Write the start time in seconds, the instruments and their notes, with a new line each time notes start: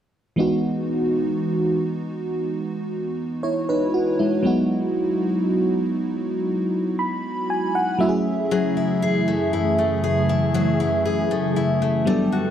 0.36 fm electric piano E3 G#3 B3 D#4 F#4
3.43 fm electric piano E4 C#5
3.69 fm electric piano D#4 B4
3.94 fm electric piano F#4
4.19 fm electric piano G#3 E4
4.43 fm electric piano F#3 G#3 B3 D#4 F#4
6.99 fm electric piano B5
7.50 fm electric piano G#5
7.75 fm electric piano F#5
7.98 fm electric piano F#3 A3 C#4 E4 F#4 E5
8.09 fm electric piano G#4
8.51 analog synth pad F#2 C#3 E3 A3 G#4, steel-string acoustic guitar F#3 G#4
8.77 steel-string acoustic guitar E4
9.02 steel-string acoustic guitar G#4
9.28 steel-string acoustic guitar A3
9.53 steel-string acoustic guitar E4
9.78 steel-string acoustic guitar A3
10.04 steel-string acoustic guitar G#4
10.29 steel-string acoustic guitar E4
10.54 steel-string acoustic guitar F#3 G#4
10.80 steel-string acoustic guitar E4
11.05 steel-string acoustic guitar G#4
11.31 steel-string acoustic guitar A3
11.56 steel-string acoustic guitar E4
11.82 steel-string acoustic guitar A3
12.05 analog synth pad G2 D3 A3 B3 A4, fm electric piano F#3 G3 B3 D4 A4, steel-string acoustic guitar G3
12.32 steel-string acoustic guitar F#4